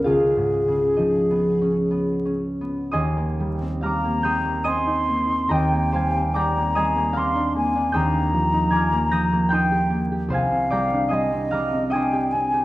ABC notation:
X:1
M:3/4
L:1/16
Q:1/4=74
K:Cm
V:1 name="Flute"
A8- A2 z2 | z4 b4 c'4 | g4 b4 c'2 a2 | b8 g2 z2 |
f4 e4 g2 a2 |]
V:2 name="Harp"
[FAf]4 [Ee]8 | [eac'e']4 [fbd'f']2 [gc'e'g']2 [eac'e']4 | [Begb]2 [cfac']2 [dgbd']2 [eac'e']2 [fbd'f']4 | [gc'e'g']4 [ad'f'a']2 [be'g'b']2 [gc'e'g']4 |
[cfac']2 [dgbd']2 [eac'e']2 [fbd'f']2 [eac'e']4 |]
V:3 name="Harp"
(3[_D,,=B,^C^D]2 A,,2 _D,2 (3F,2 _C2 _D2 (3C2 D2 C2 | E,, B, G, C G, B, G, B, C E B, E | E,, B, G, C G, B, G, B, C D B, D | E,, B, F, E F, B, F, B, E G B, G |
C,, C G, D G, C G, C D G C G |]